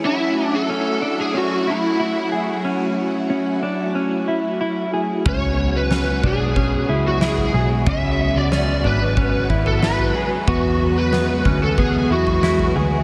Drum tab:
SD |----------------|----------------|----o-------o---|----o-------o---|
FT |----------------|----------------|o-----o-o----o--|o-----o-o--o-o--|
BD |----------------|----------------|o-----o-o-------|o-------o-o-----|

SD |----o-------o---|
FT |o-----o-o--o-o--|
BD |o-----o-o-------|